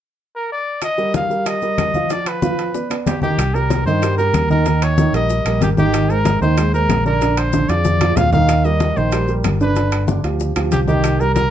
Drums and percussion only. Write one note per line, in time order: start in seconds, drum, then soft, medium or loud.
0.82 high bongo medium
0.82 high conga soft
0.82 high timbale medium
0.82 claves medium
0.82 maracas medium
0.98 high bongo soft
0.98 high conga soft
0.98 maracas soft
1.14 high bongo medium
1.14 high conga medium
1.14 high timbale medium
1.14 maracas medium
1.30 high conga soft
1.30 maracas soft
1.46 high bongo medium
1.46 high conga soft
1.46 high timbale medium
1.46 claves medium
1.46 maracas medium
1.62 high bongo soft
1.62 high conga soft
1.62 maracas soft
1.78 high bongo soft
1.78 low bongo medium
1.78 high conga medium
1.78 high timbale medium
1.78 claves medium
1.78 maracas medium
1.94 high bongo soft
1.94 high conga medium
1.94 maracas soft
2.10 high bongo medium
2.10 high conga soft
2.10 high timbale medium
2.10 maracas medium
2.26 high bongo soft
2.26 high conga soft
2.26 high timbale medium
2.26 claves medium
2.26 maracas soft
2.42 high bongo medium
2.42 high conga medium
2.42 maracas medium
2.59 high timbale medium
2.59 maracas soft
2.74 high bongo medium
2.74 high conga soft
2.74 maracas medium
2.91 high bongo soft
2.91 high conga soft
2.91 high timbale medium
2.91 claves medium
2.91 maracas soft
3.06 high bongo soft
3.06 low bongo medium
3.06 high conga medium
3.06 high timbale medium
3.06 low timbale medium
3.06 maracas medium
3.22 high bongo soft
3.22 high conga medium
3.22 maracas soft
3.38 high bongo medium
3.38 high conga soft
3.38 high timbale medium
3.38 claves medium
3.38 maracas medium
3.54 high bongo soft
3.54 high conga soft
3.54 maracas soft
3.70 high bongo medium
3.70 high conga medium
3.70 high timbale medium
3.70 maracas medium
3.87 high conga soft
3.87 maracas soft
4.02 high bongo medium
4.02 high conga soft
4.02 high timbale medium
4.02 claves medium
4.02 maracas medium
4.18 high bongo soft
4.18 high conga soft
4.18 maracas soft
4.34 high bongo soft
4.34 low bongo medium
4.34 high conga medium
4.34 high timbale medium
4.34 claves medium
4.34 maracas medium
4.50 high bongo soft
4.50 maracas soft
4.66 high bongo medium
4.66 high conga soft
4.66 high timbale medium
4.66 maracas medium
4.82 high bongo soft
4.82 high conga soft
4.82 high timbale medium
4.82 claves medium
4.82 maracas soft
4.98 high bongo medium
4.98 high conga loud
4.98 maracas medium
5.14 high timbale medium
5.14 maracas soft
5.30 high bongo medium
5.30 high conga soft
5.30 maracas medium
5.46 high bongo soft
5.46 high conga soft
5.46 high timbale medium
5.46 claves medium
5.46 maracas soft
5.61 high bongo soft
5.61 low bongo medium
5.61 high conga medium
5.61 high timbale medium
5.61 maracas medium
5.77 high bongo soft
5.77 high conga medium
5.77 maracas soft
5.94 high bongo medium
5.94 high conga soft
5.94 high timbale medium
5.94 claves medium
5.94 maracas medium
6.09 high bongo soft
6.09 high conga soft
6.09 maracas soft
6.25 high bongo medium
6.25 high conga medium
6.25 high timbale medium
6.25 maracas medium
6.42 high conga soft
6.42 maracas soft
6.57 high bongo medium
6.57 high conga soft
6.57 high timbale medium
6.57 claves medium
6.57 maracas medium
6.73 high bongo soft
6.73 high conga soft
6.73 maracas soft
6.89 high bongo soft
6.89 low bongo medium
6.89 high conga medium
6.89 high timbale medium
6.89 low timbale medium
6.89 claves medium
6.89 maracas medium
7.06 high bongo soft
7.06 maracas soft
7.21 high bongo medium
7.21 high conga soft
7.21 high timbale medium
7.21 maracas medium
7.37 high bongo soft
7.37 high conga soft
7.37 high timbale medium
7.37 claves medium
7.37 maracas soft
7.53 high bongo medium
7.53 high conga medium
7.53 maracas medium
7.69 high timbale medium
7.69 maracas soft
7.85 high bongo medium
7.85 high conga medium
7.85 maracas medium
8.01 high bongo soft
8.01 high conga medium
8.01 high timbale medium
8.01 claves medium
8.01 maracas soft
8.17 high bongo soft
8.17 low bongo medium
8.17 low conga medium
8.17 high timbale medium
8.17 maracas medium
8.32 high bongo soft
8.32 low conga loud
8.32 maracas soft
8.49 high bongo medium
8.49 high conga soft
8.49 high timbale medium
8.49 claves medium
8.49 maracas medium
8.65 high bongo soft
8.65 high conga soft
8.65 maracas soft
8.80 high bongo medium
8.80 high conga medium
8.80 high timbale medium
8.80 maracas medium
8.97 high conga soft
8.97 maracas soft
9.12 high bongo medium
9.12 high conga soft
9.12 high timbale medium
9.12 claves medium
9.12 maracas medium
9.28 high bongo soft
9.28 high conga soft
9.28 maracas soft
9.44 high bongo soft
9.44 low bongo medium
9.44 high conga medium
9.44 high timbale medium
9.44 claves medium
9.44 maracas medium
9.60 high bongo soft
9.60 maracas soft
9.76 high bongo medium
9.76 high conga soft
9.76 high timbale medium
9.76 maracas medium
9.92 high bongo soft
9.92 high conga soft
9.92 high timbale medium
9.92 claves medium
9.92 maracas soft
10.08 high bongo medium
10.08 high conga medium
10.08 maracas medium
10.24 high timbale medium
10.24 maracas soft
10.40 high bongo medium
10.40 high conga soft
10.40 maracas medium
10.56 high bongo soft
10.56 high conga soft
10.56 high timbale medium
10.56 claves medium
10.56 maracas soft
10.72 high bongo soft
10.72 low bongo medium
10.72 high conga medium
10.72 high timbale medium
10.72 maracas medium
10.88 high bongo soft
10.88 high conga medium
10.88 maracas soft
11.04 high bongo medium
11.04 high conga soft
11.04 high timbale medium
11.04 claves medium
11.04 maracas medium
11.20 high bongo soft
11.20 high conga soft
11.20 maracas soft
11.36 high bongo medium
11.36 high conga medium
11.36 high timbale medium
11.36 maracas medium